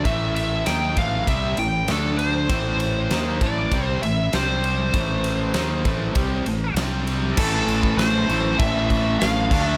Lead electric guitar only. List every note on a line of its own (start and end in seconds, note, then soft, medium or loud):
0.05 0.34 E5 medium
0.35 0.64 E5 medium
0.67 0.98 G5 medium
0.98 1.28 F5 loud
1.28 1.59 E5 loud
1.59 1.90 G5 medium
1.91 2.18 A4 medium
2.18 3.45 C5 medium
3.43 3.86 D5 medium
3.86 3.99 C5 medium
4.03 4.34 E5 medium
4.34 6.74 C5 medium
7.38 7.98 A4 medium
7.98 8.61 C5 medium
8.59 9.16 E5 loud
9.20 9.66 F5 loud
9.66 9.77 E5 loud